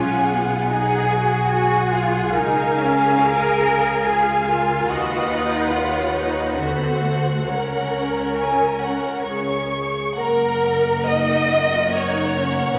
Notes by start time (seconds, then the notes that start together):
Already playing: B1 C#4 F4 G#4 F#5 G#5
0.29 B3
0.71 D#4 G#4 F#5 G#5
1.12 F#4
1.52 F#4 G#4 F#5 G#5
1.94 F4
2.34 C#2 D#4 G#4 A#4 F5 G#5
2.79 C#4
3.23 G#4 A#4
4.04 F4 G#4 F5 G#5
4.48 F4 A#4
4.87 D#2 F#4 B4 D#5 F#5
5.32 D#4
5.72 F4 C#5
6.16 D#4
6.58 D2 B3 F#4 A4 C5 F#5
7.03 A3
7.46 C#2 C#4 A#4 C#5 F#5
8.38 G#5
8.82 F#5
9.25 C#2 G#4 C#5 C#6
10.17 F#1 A#3 A#4 F#5
11.08 D#4 D#5
11.52 F4
11.93 D#4 C#5
12.36 C#4